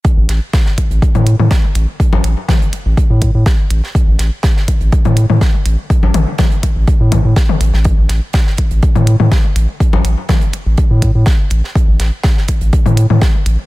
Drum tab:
HH |x-x-x-xxxxx-x-x-|x-x-xxx-x-x-x-x-|x-x-x-xxxxx-x-x-|x-x-xxx-x-x-x-x-|
SD |--o-oo------o---|----o-------o--o|--o-oo------o---|----o-------o--o|
T1 |---------o-o----|----o-----------|---------o-o----|--o-o-----o--o--|
CG |----------------|-O--------------|----------------|-O--------------|
BD |o---o-o-o---o---|o---o---o-o-o---|o---o-o-o---o---|o---o-o-o-o-o---|

HH |x-x-x-xxxxx-x-x-|x-x-xxx-x-x-x-x-|x-x-x-xxxxx-x-x-|
SD |--o-oo------o---|----o-------o--o|--o-oo------o---|
T1 |---------o-o----|----o-----------|---------o-o----|
CG |----------------|-O--------------|----------------|
BD |o---o-o-o---o---|o---o---o-o-o---|o---o-o-o---o---|